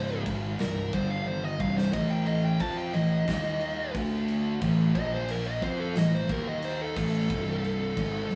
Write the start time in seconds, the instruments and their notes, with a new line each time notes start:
Already playing: fingered electric bass C#1, distorted electric guitar C#2 G#2 C#3, lead electric guitar C5
0.26 fingered electric bass G#1, distorted electric guitar G#2 D#3 G#3, kick, crash
0.59 fingered electric bass C1, distorted electric guitar C2 G2, lead electric guitar A#4, snare, crash
0.93 fingered electric bass G1, distorted electric guitar G2 D3 G3, lead electric guitar C5, kick, crash
1.10 lead electric guitar F5
1.26 lead electric guitar C5, high tom
1.44 lead electric guitar D#5
1.60 fingered electric bass C1, distorted electric guitar C2 G2 C3, lead electric guitar F5, kick
1.77 lead electric guitar C5, snare
1.93 fingered electric bass A1, distorted electric guitar A2 E3 A3, lead electric guitar D#5, kick, crash
2.10 lead electric guitar G5
2.26 lead electric guitar D#5, crash
2.45 lead electric guitar G5
2.60 fingered electric bass F2, distorted electric guitar F3 C4 F4, lead electric guitar A5, kick, crash
2.78 lead electric guitar G5
2.93 fingered electric bass A1, distorted electric guitar A2 E3, lead electric guitar D#5, crash
3.28 fingered electric bass D#2, distorted electric guitar D#3 A#3 D#4, kick, snare, crash
3.61 crash
3.95 fingered electric bass D2, distorted electric guitar D3 A3 D4, kick, crash
4.28 crash
4.62 fingered electric bass A1, distorted electric guitar A2 E3 A3, kick, crash
4.95 fingered electric bass A#1, distorted electric guitar A#2 F3 A#3, lead electric guitar D#5, kick, crash
5.14 lead electric guitar C5
5.28 lead electric guitar A#4, crash
5.46 lead electric guitar D#5
5.62 fingered electric bass F2, distorted electric guitar F3 C4 F4, lead electric guitar C5, kick, crash
5.80 lead electric guitar A4
5.96 fingered electric bass A1, distorted electric guitar A2 E3, lead electric guitar D#5, snare, crash
6.14 lead electric guitar C5
6.29 fingered electric bass D#2, distorted electric guitar D#3 A#3 D#4, lead electric guitar A#4, kick, crash
6.49 lead electric guitar D#5
6.62 lead electric guitar C5, crash
6.82 lead electric guitar A4
6.96 fingered electric bass A1, distorted electric guitar A2 E3 A3, lead electric guitar A4, kick, snare, crash
7.29 fingered electric bass C1, distorted electric guitar C2 G2 C3, kick, crash
7.64 crash
7.97 fingered electric bass G#1, distorted electric guitar G#2 D#3 G#3, kick, crash
8.30 fingered electric bass C1, distorted electric guitar C2 G2, crash